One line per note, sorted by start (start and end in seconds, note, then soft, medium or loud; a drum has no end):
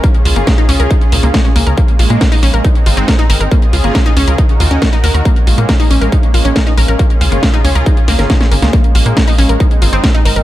0.00 1.76 C#3 medium
0.00 0.14 A#3 medium
0.00 2.61 C#4 medium
0.00 1.76 F4 medium
0.00 1.76 G#4 medium
0.00 kick loud
0.00 closed hi-hat soft
0.15 closed hi-hat soft
0.25 0.33 C#2 loud
0.25 0.33 F4 medium
0.25 open hi-hat loud
0.36 0.44 G#1 medium
0.36 0.44 A#3 medium
0.36 closed hi-hat medium
0.47 0.52 A#4 medium
0.47 kick loud
0.47 snare loud
0.47 closed hi-hat soft
0.58 0.65 D#4 loud
0.58 closed hi-hat soft
0.69 0.77 C#2 medium
0.69 0.76 C#4 loud
0.69 open hi-hat loud
0.80 0.88 C#2 medium
0.80 0.90 A#4 medium
0.80 closed hi-hat medium
0.90 1.01 D#4 medium
0.90 kick loud
0.90 closed hi-hat soft
1.01 closed hi-hat soft
1.12 1.20 C#2 medium
1.12 1.23 A#2 medium
1.12 open hi-hat loud
1.23 1.31 C#2 medium
1.23 1.31 A#3 medium
1.23 closed hi-hat soft
1.34 1.44 G#3 medium
1.34 kick loud
1.34 snare loud
1.34 closed hi-hat soft
1.45 1.52 C#4 medium
1.45 closed hi-hat soft
1.56 1.64 C#2 medium
1.56 1.60 A#3 loud
1.56 open hi-hat loud
1.67 1.75 C#2 medium
1.67 1.71 A#4 medium
1.67 closed hi-hat soft
1.77 2.63 G#3 medium
1.77 1.88 A#3 medium
1.77 2.64 A#3 medium
1.77 kick loud
1.77 closed hi-hat soft
1.88 closed hi-hat soft
1.99 2.07 A#1 loud
1.99 2.07 F4 medium
1.99 open hi-hat medium
2.10 2.18 A#2 medium
2.10 2.18 A#3 medium
2.10 closed hi-hat soft
2.21 2.25 A#4 medium
2.21 kick loud
2.21 snare loud
2.21 closed hi-hat soft
2.32 2.39 D#4 loud
2.32 open hi-hat medium
2.43 2.51 A#1 medium
2.43 2.50 C#4 loud
2.43 open hi-hat loud
2.54 2.61 A#1 medium
2.54 2.64 A#4 medium
2.54 closed hi-hat soft
2.64 3.51 G#3 medium
2.64 3.51 C4 medium
2.64 3.51 D#4 medium
2.64 2.75 D#4 medium
2.64 kick loud
2.64 closed hi-hat soft
2.75 closed hi-hat soft
2.86 2.94 G#1 loud
2.86 2.94 F4 medium
2.86 open hi-hat loud
2.97 3.05 G#1 medium
2.97 3.07 C4 loud
2.97 closed hi-hat soft
3.08 3.12 A#4 medium
3.08 kick loud
3.08 snare loud
3.08 closed hi-hat soft
3.19 3.26 D#4 loud
3.19 closed hi-hat soft
3.30 3.38 G#1 medium
3.30 3.37 A#4 loud
3.30 open hi-hat loud
3.40 3.48 G#1 medium
3.40 3.51 A#4 medium
3.40 closed hi-hat soft
3.51 4.38 C#3 medium
3.51 3.62 A#3 medium
3.51 4.38 C#4 medium
3.51 4.38 F4 medium
3.51 4.38 G#4 medium
3.51 kick loud
3.51 closed hi-hat soft
3.62 closed hi-hat soft
3.73 3.81 C#2 loud
3.73 3.81 F4 medium
3.73 open hi-hat medium
3.84 3.92 G#1 medium
3.84 3.92 A#3 medium
3.84 closed hi-hat soft
3.95 3.99 A#4 medium
3.95 kick loud
3.95 snare loud
3.95 closed hi-hat soft
4.06 4.13 D#4 loud
4.06 closed hi-hat soft
4.17 4.25 C#2 medium
4.17 4.24 C#4 loud
4.17 open hi-hat medium
4.27 4.35 C#2 medium
4.27 4.38 A#4 medium
4.27 closed hi-hat soft
4.38 5.25 D#3 medium
4.38 4.49 D#4 medium
4.38 5.25 D#4 medium
4.38 5.25 F#4 medium
4.38 5.25 A#4 medium
4.38 kick loud
4.38 closed hi-hat soft
4.49 closed hi-hat soft
4.60 4.68 D#2 medium
4.60 4.68 F4 medium
4.60 open hi-hat loud
4.71 4.79 D#2 medium
4.71 4.81 C#4 loud
4.71 closed hi-hat medium
4.82 4.86 A#4 medium
4.82 kick loud
4.82 snare loud
4.82 closed hi-hat medium
4.93 5.00 D#4 loud
4.93 closed hi-hat soft
5.04 5.11 D#2 medium
5.04 5.11 A#4 loud
5.04 open hi-hat medium
5.14 5.22 D#2 medium
5.14 5.25 A#4 medium
5.14 closed hi-hat medium
5.25 6.98 G#3 medium
5.25 6.98 A#3 medium
5.25 5.36 A#3 medium
5.25 9.56 C#4 medium
5.25 kick loud
5.25 closed hi-hat medium
5.36 closed hi-hat soft
5.47 5.55 A#1 loud
5.47 5.55 F4 medium
5.47 open hi-hat medium
5.58 5.66 A#2 medium
5.58 5.65 A#3 medium
5.58 closed hi-hat medium
5.69 5.73 A#4 medium
5.69 kick loud
5.69 snare loud
5.69 closed hi-hat medium
5.80 5.87 D#4 loud
5.80 open hi-hat medium
5.91 5.98 A#1 medium
5.91 5.98 C#4 loud
5.91 open hi-hat loud
6.01 6.09 A#1 medium
6.01 6.12 A#4 medium
6.01 closed hi-hat medium
6.12 6.23 D#4 medium
6.12 kick loud
6.12 closed hi-hat medium
6.23 closed hi-hat soft
6.34 6.42 A#1 medium
6.34 6.42 F4 medium
6.34 open hi-hat medium
6.45 6.53 A#1 medium
6.45 6.55 C#4 loud
6.45 closed hi-hat medium
6.56 6.60 A#4 medium
6.56 kick loud
6.56 snare loud
6.56 closed hi-hat medium
6.67 6.74 D#4 loud
6.67 closed hi-hat soft
6.77 6.85 A#1 medium
6.77 6.85 A#4 loud
6.77 open hi-hat loud
6.88 6.96 A#1 medium
6.88 6.99 A#4 medium
6.88 closed hi-hat medium
6.99 8.71 C#3 medium
6.99 7.10 A#3 medium
6.99 8.71 F4 medium
6.99 8.71 G#4 medium
6.99 kick loud
6.99 closed hi-hat medium
7.10 closed hi-hat soft
7.21 7.29 C#2 medium
7.21 7.29 F4 medium
7.21 open hi-hat medium
7.32 7.40 G#1 medium
7.32 7.39 A#3 medium
7.32 closed hi-hat medium
7.43 7.47 A#4 medium
7.43 kick loud
7.43 snare loud
7.43 closed hi-hat medium
7.54 7.61 D#4 loud
7.54 closed hi-hat soft
7.64 7.72 C#2 medium
7.64 7.72 C#4 loud
7.64 open hi-hat loud
7.75 7.83 C#2 medium
7.75 7.86 A#4 medium
7.75 closed hi-hat medium
7.86 7.97 D#4 medium
7.86 kick loud
7.86 closed hi-hat medium
7.97 closed hi-hat soft
8.08 8.16 C#2 medium
8.08 8.18 A#3 loud
8.08 snare medium
8.08 open hi-hat loud
8.19 8.27 G#1 medium
8.19 8.23 A#4 medium
8.19 snare medium
8.19 closed hi-hat medium
8.30 8.37 D#4 medium
8.30 kick loud
8.30 snare medium
8.30 closed hi-hat medium
8.41 8.48 C#4 medium
8.41 snare medium
8.41 closed hi-hat soft
8.51 8.59 G#1 medium
8.51 8.56 A#3 medium
8.51 open hi-hat loud
8.62 8.70 C#2 medium
8.62 8.72 A#3 medium
8.62 snare medium
8.62 closed hi-hat medium
8.73 10.43 G#3 medium
8.73 9.59 A#3 medium
8.73 8.84 A#3 medium
8.73 kick loud
8.73 closed hi-hat medium
8.84 closed hi-hat soft
8.95 9.03 A#1 loud
8.95 9.02 F4 medium
8.95 open hi-hat loud
9.06 9.14 A#2 medium
9.06 9.13 A#3 medium
9.06 closed hi-hat medium
9.17 9.21 A#4 medium
9.17 kick loud
9.17 snare loud
9.17 closed hi-hat soft
9.28 9.35 D#4 loud
9.28 open hi-hat medium
9.38 9.46 A#1 medium
9.38 9.46 C#4 loud
9.38 open hi-hat loud
9.49 9.57 A#1 medium
9.49 9.60 A#4 medium
9.49 closed hi-hat medium
9.60 10.43 C4 medium
9.60 9.71 D#4 medium
9.60 10.43 D#4 medium
9.60 kick loud
9.60 closed hi-hat medium
9.71 closed hi-hat soft
9.82 9.90 G#1 medium
9.82 9.89 F4 medium
9.82 open hi-hat loud
9.93 10.01 G#1 medium
9.93 10.03 C4 loud
9.93 closed hi-hat soft
10.04 10.08 A#4 medium
10.04 kick loud
10.04 snare loud
10.04 closed hi-hat medium
10.14 10.22 D#4 loud
10.14 closed hi-hat soft
10.25 10.33 G#1 medium
10.25 10.33 A#4 loud
10.25 open hi-hat loud
10.36 10.43 G#1 medium
10.36 10.43 A#4 medium
10.36 closed hi-hat medium